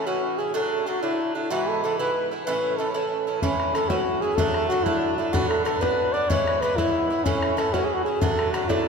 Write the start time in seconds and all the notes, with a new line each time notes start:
0.07 A2 E3 C#4 E4 F#4
0.38 E3 C#4 E4 G#4
0.54 A2 F#3 A3 D4 A4
0.86 A2 F#3 A3 D4 F#4
1.03 A2 F#3 A3 D4 E4
1.35 F#3 A3 D4 E4
1.50 G#2 E3 B3 E4 F#4
1.68 A4
1.83 G#2 E3 B3 E4 A4
1.99 G#2 E3 B3 E4 B4
2.31 E3 B3 E4
2.46 A2 E3 C#4 E4 B4
2.77 A2 E3 C#4 E4 A4
2.92 A2 E3 C#4 E4 A4
3.27 E3 C#4 E4
3.42 A2 E3 C#4 E4, bodhran
3.60 bodhran
3.75 A2 E3 C#4 E4 A4, bodhran
3.89 A2 E3 C#4 E4 F#4, bodhran
4.21 E3 C#4 E4 G#4
4.36 A2 F#3 A3 D4 A4, bodhran
4.54 bodhran
4.69 A2 F#3 A3 D4 F#4
4.84 A2 F#3 A3 D4 E4, bodhran
5.17 F#3 A3 D4 E4
5.33 A2 F#3 B3 D4 F#4, bodhran
5.49 A4, bodhran
5.65 A2 F#3 B3 D4 A4, bodhran
5.81 A2 F#3 B3 D4 B4, bodhran
6.13 F#3 B3 D4 D5
6.29 G#2 E3 B3 E4 C#5, bodhran
6.47 bodhran
6.61 G#2 E3 B3 E4 B4, bodhran
6.77 G#2 E3 B3 E4, bodhran
7.10 E3 B3 E4
7.24 A2 E3 C#4 E4, bodhran
7.42 bodhran
7.57 A2 E3 C#4 E4 A4, bodhran
7.73 A2 E3 C#4 E4 F#4, bodhran
7.85 G#4
7.94 F#4
8.05 E3 C#4 E4 G#4
8.20 A2 F#3 A3 D4 A4, bodhran
8.39 bodhran
8.52 A2 F#3 A3 D4 F#4, bodhran
8.69 A2 F#3 A3 D4 E4, bodhran